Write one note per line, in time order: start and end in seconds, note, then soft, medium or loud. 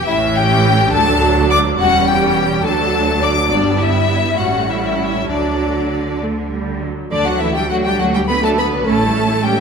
0.07 0.89 A1 medium
0.07 0.89 A2 medium
0.07 0.89 E3 medium
0.07 0.89 C#4 medium
0.07 0.15 E4 medium
0.07 0.35 E5 medium
0.36 0.93 G4 medium
0.36 0.94 G5 medium
0.92 1.79 D2 medium
0.92 1.79 F#3 medium
0.92 1.79 D4 medium
0.92 1.50 A4 medium
0.92 1.49 A5 medium
1.49 1.57 D5 medium
1.49 1.58 D6 medium
1.78 2.64 E1 medium
1.78 2.63 E2 medium
1.78 2.64 G3 medium
1.78 2.64 C#4 medium
1.78 2.07 F#4 medium
1.78 2.07 F#5 medium
2.07 2.64 G4 medium
2.07 2.66 G5 medium
2.65 3.50 D2 medium
2.65 3.52 F#3 medium
2.65 3.50 D4 medium
2.65 3.21 A4 medium
2.65 3.22 A5 medium
3.22 3.30 D5 medium
3.22 3.52 D6 medium
3.51 4.40 G1 medium
3.51 4.41 G2 medium
3.51 4.40 G3 soft
3.51 4.41 B3 medium
3.51 3.80 D4 medium
3.51 3.81 D5 medium
3.79 4.40 E4 medium
3.79 4.40 E5 medium
4.39 5.31 A1 soft
4.39 5.30 A2 soft
4.39 5.29 G3 soft
4.39 5.29 C#4 soft
4.39 4.70 F#4 soft
4.39 4.70 F#5 medium
4.70 5.29 E4 soft
4.70 4.78 E5 soft
4.79 4.87 F#5 soft
4.86 4.95 E5 soft
4.95 5.04 F#5 soft
5.03 5.30 E5 medium
5.29 6.87 D2 soft
5.29 6.88 D3 soft
5.29 6.14 F#3 soft
5.29 6.19 D4 soft
5.29 6.15 D4 soft
5.29 6.19 D5 soft
6.21 6.29 A3 soft
6.51 6.81 G3 soft
6.81 7.11 F#3 soft
7.10 7.88 D2 medium
7.10 7.25 D3 soft
7.10 7.17 D3 medium
7.10 7.25 A3 soft
7.10 7.25 D4 medium
7.10 7.25 D5 medium
7.25 7.40 F#3 soft
7.25 7.41 D4 soft
7.25 7.41 F#4 medium
7.25 7.41 F#5 medium
7.40 7.55 D3 soft
7.40 7.55 E3 soft
7.40 7.55 A3 soft
7.40 7.55 E4 medium
7.40 7.55 E5 medium
7.55 7.70 F#3 soft
7.55 7.69 G3 medium
7.55 7.70 D4 soft
7.55 7.70 G4 medium
7.55 7.70 G5 medium
7.70 7.83 D3 soft
7.70 7.84 F#3 medium
7.70 7.83 A3 soft
7.70 7.84 F#4 medium
7.70 7.75 F#5 medium
7.84 7.99 F#3 soft
7.84 7.99 G3 medium
7.84 7.99 D4 soft
7.84 8.00 G4 medium
7.84 7.99 G5 medium
7.98 8.75 D2 medium
7.98 8.14 D3 soft
7.98 8.13 F#3 medium
7.98 8.14 A3 soft
7.98 8.14 F#4 medium
7.98 8.05 F#5 medium
8.13 8.28 F#3 soft
8.13 8.19 G3 medium
8.13 8.28 D4 soft
8.13 8.28 G4 medium
8.13 8.20 G5 medium
8.27 8.41 D3 soft
8.27 8.41 A3 soft
8.27 8.34 B3 medium
8.27 8.43 B4 medium
8.27 8.42 B5 medium
8.41 8.56 F#3 soft
8.41 8.56 A3 medium
8.41 8.56 D4 soft
8.41 8.57 A4 medium
8.41 8.49 A5 medium
8.55 8.71 D3 soft
8.55 8.71 A3 soft
8.55 8.86 B3 medium
8.55 8.87 B4 medium
8.55 8.66 B5 medium
8.71 8.86 F#3 soft
8.71 8.86 D4 soft
8.85 9.60 A1 medium
8.85 8.99 A3 soft
8.85 9.42 A3 medium
8.85 8.99 C#4 medium
8.85 9.43 A4 medium
8.85 9.43 A5 medium
9.00 9.14 G3 soft
9.00 9.14 E4 soft
9.14 9.29 A3 soft
9.14 9.29 C#4 soft
9.28 9.43 G3 soft
9.28 9.43 E4 soft
9.43 9.58 G3 medium
9.43 9.56 A3 soft
9.43 9.56 C#4 soft
9.43 9.58 G4 medium
9.43 9.58 G5 medium